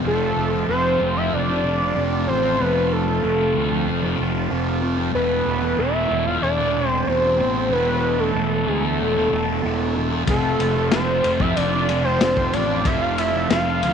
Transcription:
0.04 F1 F2 C3 F3 A3 C4 F4 A4
0.37 F1
0.51 C3 F3
0.67 F1 F2 C3 F3 C5
0.99 F1 F2 C3 F3
1.16 E5, muted distorted electric guitar stroke
1.33 F1 D5
1.46 C3 F3
1.63 F2 C3 F3
1.78 C3 F3
1.95 F1 F2 C3 F3
2.27 A1 F2 C3 F3 C5
2.43 muted distorted electric guitar stroke
2.58 F1 F2 C3 F3 B4
2.92 A4
3.06 C3 F3
3.23 F1 F2 C3 F3
3.54 D2 F2 C3 F3
3.71 muted distorted electric guitar stroke
3.87 F1
4.02 C3 F3
4.17 F1 F2 C3 F3
4.33 C3 F3
4.49 F1 F2 C3 F3
4.80 F2 C3 F3
4.98 muted distorted electric guitar stroke
5.13 E1 E2 B2 E3 E4 B4
5.46 E1
5.61 B2 E3
5.77 E1 E2 B2 E3 E5
6.10 E1 E2 B2 E3
6.26 F5, muted distorted electric guitar stroke
6.42 E1 D5
6.58 B2 E3
6.74 E2 B2 E3
6.88 E3 C5
6.93 B2
7.06 E1 E2 B2 E3 C5
7.38 A1 E2 B2 E3
7.55 muted distorted electric guitar stroke
7.69 E1 E2 B2 E3 B4
8.18 B2 E3 A4
8.33 E1 E2 B2 E3
8.65 D2 E2 B2 E3 G#4
8.83 A4, muted distorted electric guitar stroke
9.00 E1
9.14 B2 E3
9.30 E1 E2 B2 E3
9.45 E3
9.49 B2
9.62 E1 E2 B2 E3
9.94 E2 B2 E3
10.11 muted distorted electric guitar stroke
10.25 F1 F2 C3 F3 C4 F4 A4, kick, ride
10.30 A4
10.60 F1, ride
10.75 C3 F3
10.90 F1 F2 C3 F3 C5, snare, ride
11.23 F1 F2 C3 F3, ride
11.40 E5, muted distorted electric guitar stroke, kick
11.56 F1 D5, ride
11.71 C3 F3
11.87 F2 C3 F3, ride
12.03 C3 F3 C5
12.19 F1 F2 C3 F3, snare, ride
12.37 kick
12.51 A1 F2 C3 F3 D5, ride
12.68 muted distorted electric guitar stroke
12.84 F1 F2 C3 F3 E5, kick, ride
13.02 F5
13.18 E5, ride
13.32 C3 F3
13.48 F1 F2 C3 F3 F5, snare, ride
13.81 D2 F2 C3 F3, ride

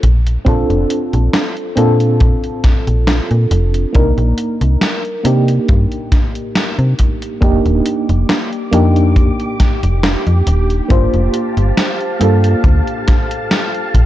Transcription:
0.03 A#1, kick, closed hi-hat
0.27 closed hi-hat
0.45 A#1 C4 D4 F4 A4, kick, closed hi-hat
0.70 F1, closed hi-hat
0.90 closed hi-hat
1.13 A#1, closed hi-hat
1.33 snare, closed hi-hat
1.57 closed hi-hat
1.76 A#2 C4 D4 F4 A4, closed hi-hat
2.00 closed hi-hat
2.20 kick, closed hi-hat
2.44 closed hi-hat
2.64 kick, snare, closed hi-hat
2.87 A#1, closed hi-hat
3.07 snare, closed hi-hat
3.31 A#2, closed hi-hat
3.51 F1, closed hi-hat
3.74 closed hi-hat
3.93 C2 A#3 D4 D#4 A#4, kick, closed hi-hat
4.18 A#1, closed hi-hat
4.38 closed hi-hat
4.61 C2, closed hi-hat
4.81 snare, closed hi-hat
5.05 closed hi-hat
5.23 C3 A#3 D4 D#4 G4, closed hi-hat
5.48 closed hi-hat
5.68 G2, kick, closed hi-hat
5.92 closed hi-hat
6.12 kick, snare, closed hi-hat
6.35 closed hi-hat
6.55 snare, closed hi-hat
6.79 C3, closed hi-hat
6.99 kick, closed hi-hat
7.22 closed hi-hat
7.41 F1 A#3 D4 D#4 G4 D6, kick, closed hi-hat
7.66 D#1, closed hi-hat
7.86 closed hi-hat
8.09 F1, closed hi-hat
8.29 snare, closed hi-hat
8.53 closed hi-hat
8.71 F2 A#3 D4 D#4 G4, closed hi-hat
8.96 closed hi-hat
9.16 kick, closed hi-hat
9.40 closed hi-hat
9.60 kick, snare, closed hi-hat
9.83 F1, closed hi-hat
10.03 snare, closed hi-hat
10.27 F2, closed hi-hat
10.47 D#1, closed hi-hat
10.70 closed hi-hat
10.88 G1 A#3 D4 F4 C5 F5 A5, kick, closed hi-hat
11.14 F1, closed hi-hat
11.34 closed hi-hat
11.57 G1, closed hi-hat
11.77 snare, closed hi-hat
12.00 closed hi-hat
12.19 G2 A#3 D4 F4 A4, closed hi-hat
12.44 closed hi-hat
12.64 D2, kick, closed hi-hat
12.87 closed hi-hat
13.08 kick, snare, closed hi-hat
13.31 closed hi-hat
13.51 snare, closed hi-hat
13.74 closed hi-hat
13.94 A#1 A#3 D6, kick, closed hi-hat

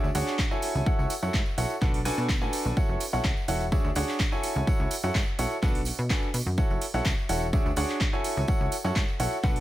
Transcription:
0.04 D2, tambourine
0.15 D2 D4 F#4 G#4 C#5 F#5, open hi-hat, tambourine
0.28 clap, tambourine
0.39 kick, clap, tambourine
0.51 E4 F#4 A4 C#5 G#5, tambourine
0.62 open hi-hat, tambourine
0.75 C#2, tambourine, high conga
0.86 E4 F#4 A4 C#5 F#5, kick, tambourine
0.99 C#2, tambourine
1.10 open hi-hat, tambourine
1.23 F#2 E4 F#4 A4 C#5 F#5, tambourine
1.33 G#2, kick, clap, tambourine
1.46 tambourine
1.58 B1 E4 F#4 A4 C#5 F#5, open hi-hat, tambourine
1.70 tambourine
1.82 B1 D4 F#4 A4 B4 F#5, kick, clap, tambourine
1.94 open hi-hat, tambourine
2.05 D4 F#4 A4 B4 G#5, open hi-hat, tambourine
2.17 B2, tambourine
2.29 kick, clap, tambourine
2.42 A2 D4 F#4 A4 B4 G#5, tambourine
2.53 open hi-hat, tambourine
2.65 B1, tambourine, high conga
2.77 E4 F#4 A4 C#5 F#5, kick, tambourine
2.89 F#1, tambourine
3.00 open hi-hat, tambourine
3.13 B1 E4 F#4 A4 C#5 F#5, tambourine
3.24 C#2, kick, clap, tambourine
3.37 tambourine
3.48 E1 E4 F#4 A4 C#5 F#5, open hi-hat, tambourine
3.60 tambourine
3.72 D2 D4 F#4 G#4 C#5 E5, kick, tambourine
3.85 D2, tambourine
3.95 D2 D4 F#4 G#4 C#5 F#5, open hi-hat, tambourine
4.08 clap, tambourine
4.19 kick, clap, tambourine
4.32 E4 F#4 A4 C#5 G#5, tambourine
4.43 open hi-hat, tambourine
4.55 C#2, tambourine, high conga
4.67 E4 F#4 A4 C#5 F#5, kick, tambourine
4.79 C#2, tambourine
4.91 open hi-hat, tambourine
5.04 F#2 E4 F#4 A4 C#5 F#5, tambourine
5.15 G#2, kick, clap, tambourine
5.27 tambourine
5.39 B1 E4 F#4 A4 C#5 F#5, open hi-hat, tambourine
5.51 tambourine
5.63 B1 D4 F#4 A4 B4 F#5, kick, clap, tambourine
5.75 open hi-hat, tambourine
5.85 open hi-hat, tambourine
5.98 B2, tambourine
6.10 D4 F#4 A4 B4 G#5, kick, clap, tambourine
6.23 tambourine
6.34 B2, open hi-hat, tambourine
6.45 F#2, tambourine, high conga
6.58 E4 F#4 A4 C#5 F#5, kick, tambourine
6.70 F#1, tambourine
6.81 open hi-hat, tambourine
6.94 B1 E4 F#4 A4 C#5 F#5, tambourine
7.05 C#2, kick, clap, tambourine
7.18 tambourine
7.29 E1 E4 F#4 A4 C#5 F#5, open hi-hat, tambourine
7.42 tambourine
7.53 D2 D4 F#4 G#4 C#5 E5, kick, tambourine
7.65 D2, tambourine
7.76 D2 D4 F#4 G#4 C#5 F#5, open hi-hat, tambourine
7.89 clap, tambourine
8.00 kick, clap, tambourine
8.13 E4 F#4 A4 C#5 G#5, tambourine
8.24 open hi-hat, tambourine
8.37 C#2, tambourine, high conga
8.48 E4 F#4 A4 C#5 F#5, kick, tambourine
8.60 C#2, tambourine
8.72 open hi-hat, tambourine
8.84 F#2 E4 F#4 A4 C#5 F#5, tambourine
8.95 G#2, kick, clap, tambourine
9.08 tambourine
9.20 B1 E4 F#4 A4 C#5 F#5, open hi-hat, tambourine
9.32 tambourine
9.43 B1 D4 F#4 A4 B4 F#5, kick, clap, tambourine
9.56 open hi-hat, tambourine

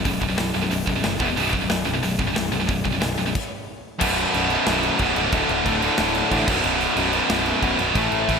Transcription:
0.04 B0 B1 F#2, kick, open hi-hat
0.21 B0 B1 F#2, kick
0.29 B1 F#2
0.37 B0 B1 F#2, snare, open hi-hat
0.54 B0 B1 F#2
0.63 B1 F#2
0.70 B0 B1 F#2, open hi-hat
0.87 B0 B1 F#2, kick
0.96 B1 F#2
1.04 F#1 B1 F#2, snare, open hi-hat
1.12 snare
1.19 E1 E2 B2 E3, kick
1.29 E2 B2
1.37 B0 B1 F#2 B2, open hi-hat
1.53 B0 B1 F#2, kick
1.62 B1 F#2
1.69 B0 B1 F#2, snare, open hi-hat
1.86 B0 B1 F#2
1.93 B1 F#2
2.02 B0 B1 F#2, open hi-hat
2.18 B0 B1 F#2, kick
2.27 B1 F#2
2.35 B0 B1 F#2, snare, open hi-hat
2.52 B0 B1 F#2
2.60 B1 F#2
2.67 B0 B1 F#2, kick, open hi-hat
2.84 B0 B1 F#2, kick
2.92 B1 F#2
3.01 B0 B1 F#2, snare, open hi-hat
3.17 B0 B1 F#2
3.25 B1 F#2
3.35 kick, crash
3.99 B0 B1 F#2 B2, kick, crash
4.18 crash
4.34 B0 B1 F#2 B2, crash
4.50 B1 F#2 B2, crash
4.67 B0 B1 F#2 B2, snare, crash
4.83 crash
4.99 B0 B1 F#2 B2, kick, crash
5.16 C#1 B1 F#2 B2, crash
5.32 D1 D2 A2 D3, kick, crash
5.49 D1, crash
5.65 D1 D2 A2 D3, kick, crash
5.78 D3, crash
5.83 D2 A2 D3
5.98 D1 D2 A2 D3, snare, crash
6.15 crash
6.31 A1 D2 A2 D3, kick, crash
6.48 B0 B1 F#2 B2, kick, crash
6.64 B0 B1 F#2 B2, crash
6.81 snare, crash
6.94 B0 B1 F#2 B2, crash
6.99 B1
7.13 B1 F#2 B2, crash
7.30 B0 B1 F#2 B2, snare, crash
7.44 B1 F#2 B2, crash
7.62 B0 B1 F#2 B2, kick, crash
7.78 B0 B1 F#2 B2, crash
7.95 A1 A2 E3 A3, kick, crash
8.11 A1, crash
8.28 A1 A2 E3 A3, kick, crash

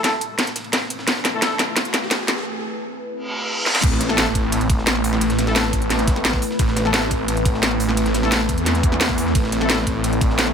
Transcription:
Already playing: A3 C4 E4 B4, riser
0.04 A3 E4 A4, kick, snare, closed hi-hat, ride
0.13 snare
0.21 closed hi-hat, ride
0.39 kick, snare, closed hi-hat, ride
0.47 snare, closed hi-hat
0.56 snare, closed hi-hat, ride
0.64 ride
0.73 kick, snare, closed hi-hat, ride
0.82 snare
0.90 closed hi-hat, ride
0.99 snare
1.07 kick, snare, closed hi-hat, ride
1.16 snare
1.25 snare, closed hi-hat, ride
1.33 A3 E4 A4
1.42 A3 E4 A4, kick, snare, closed hi-hat, ride
1.51 snare
1.59 snare, closed hi-hat, ride
1.76 kick, snare, closed hi-hat, ride
1.85 closed hi-hat
1.94 snare, closed hi-hat, ride
2.02 snare
2.11 kick, snare, closed hi-hat, ride
2.28 snare, closed hi-hat, ride
2.37 snare
3.14 reverse cymbal
3.66 snare
3.75 snare
3.83 A1 A3 C4 E4 B4, kick, closed hi-hat, crash, ride, sub drop
3.92 snare
4.01 snare, closed hi-hat, ride
4.09 A3 E4 A4, snare
4.18 A3 E4 A4, snare, closed hi-hat, ride
4.27 snare
4.35 A1, kick, closed hi-hat, ride
4.52 closed hi-hat, ride
4.61 closed hi-hat
4.70 kick, closed hi-hat, ride
4.78 snare
4.87 A1, snare, closed hi-hat, ride
4.95 snare
5.04 open hi-hat, ride
5.13 snare
5.21 closed hi-hat, ride
5.30 snare, closed hi-hat
5.39 snare, closed hi-hat, ride
5.47 A3 E4 A4, snare
5.56 A3 E4 A4, snare, closed hi-hat, ride
5.64 snare
5.73 A1, kick, closed hi-hat, ride
5.82 closed hi-hat
5.90 snare, closed hi-hat, ride
5.99 snare, closed hi-hat
6.08 kick, snare, closed hi-hat, ride
6.16 snare, ride
6.25 A1, snare, closed hi-hat, ride
6.33 kick, snare
6.42 open hi-hat, ride
6.51 snare
6.59 A1, kick, closed hi-hat, ride
6.68 snare
6.77 snare, closed hi-hat, ride
6.85 A3 E4 A4, snare
6.94 A3 E4 A4, snare, closed hi-hat, ride
7.02 snare
7.11 A1, kick, closed hi-hat, ride
7.28 closed hi-hat, ride
7.37 closed hi-hat
7.45 kick, closed hi-hat, ride
7.54 snare
7.63 A1, snare, closed hi-hat, ride
7.71 snare
7.80 open hi-hat, ride
7.89 snare
7.97 closed hi-hat, ride
8.06 snare, closed hi-hat
8.14 snare, closed hi-hat, ride
8.23 A3 E4 A4, snare
8.32 A3 E4 A4, snare, closed hi-hat, ride
8.40 snare
8.49 E2, kick, closed hi-hat, ride
8.58 closed hi-hat
8.66 snare, closed hi-hat, ride
8.75 snare, closed hi-hat
8.83 kick, closed hi-hat
8.92 snare
9.01 snare, closed hi-hat, ride
9.09 kick, snare
9.18 open hi-hat, ride
9.27 snare
9.35 A1 D5, kick, closed hi-hat, ride
9.44 snare
9.52 snare, closed hi-hat, ride
9.61 A3 E4 A4, snare
9.70 A3 E4 A4, snare, closed hi-hat, ride
9.78 snare
9.87 A1, kick, closed hi-hat, ride
10.04 closed hi-hat, ride
10.13 closed hi-hat
10.21 kick, closed hi-hat, ride
10.30 snare
10.39 A1, snare, closed hi-hat, ride
10.47 snare

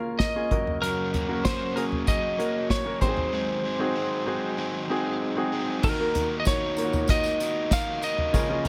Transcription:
Already playing: C#2 C#3 A#3 C#4 F4 G#4 A#4 F5
0.19 D#5, kick, snare, closed hi-hat
0.35 A#3 C#4 F4 G#4
0.51 F#1 F#2 A#3 C#4 F#4 A#4, kick, closed hi-hat
0.67 floor tom
0.82 F#2 C#3 F#3 A#3 C#4 F#4 A#4, closed hi-hat
1.13 F#3 A#3 C#4 F#4, closed hi-hat, floor tom
1.28 A#3 C#4 F#4 A#4
1.44 F#3 A#3 C#4 F#4 C5, kick, snare, closed hi-hat
1.76 A#3 C#4 F#4 G#4 A#4, closed hi-hat
1.92 floor tom
2.07 F#2 C#3 F#3 A#3 C#4 F#4 D#5, kick, closed hi-hat
2.38 F#3 A#3 C#4 F#4 A#4, closed hi-hat
2.70 C#5, kick, snare, closed hi-hat
2.85 A#3 C#4 F#4 A#4
3.01 G#1 G#2 F#3 G#3 C4 D#4 F#4 G4 G#4 C5, kick, closed hi-hat
3.09 G#4
3.17 floor tom
3.32 G#2 D#3 F#3 G#3 C4 G#4
3.63 F#3 G#3 C4 G#4
3.79 C4 D#4 F#4 G#4
3.94 F#3 G#3 C4 G#4
4.26 C4 D#4 F#4 G#4
4.57 G#2 D#3 F#3 G#3 C4 G#4
4.88 F#3 G#3 C4 D#4 F#4 G#4
5.37 C4 D#4 F#4 G#4
5.52 F#3 G#3 C4 G#4
5.82 D#2 D#3 A#3 D#4 F#4 A#4, kick, crash, tambourine
5.99 A#3 D#4 F#4 A#4
6.14 D#4 F#4 A#4, closed hi-hat, floor tom, tambourine
6.40 D#5
6.45 D#3 D#4 F#4 A#4 C#5, kick, snare, closed hi-hat, tambourine
6.77 A#3 D#4 F4 A#4, closed hi-hat, tambourine
6.84 F#4
6.93 floor tom, tambourine
7.08 D#3 D#4 F#4 A#4 D#5, kick, closed hi-hat, tambourine
7.23 snare, tambourine
7.40 D#4 F#4 A#4, closed hi-hat, tambourine
7.71 D#3 D#4 F#4 A#4 F5, kick, snare, closed hi-hat, tambourine
8.02 D#4 F#4 A#4 D#5, closed hi-hat, tambourine
8.18 floor tom
8.33 C#2 C#3 F3 G#3 A#3 C#4 F4 G#4 A#4, kick, closed hi-hat, tambourine
8.49 C#4 F4 G#4 A#4
8.65 A#4, closed hi-hat, floor tom

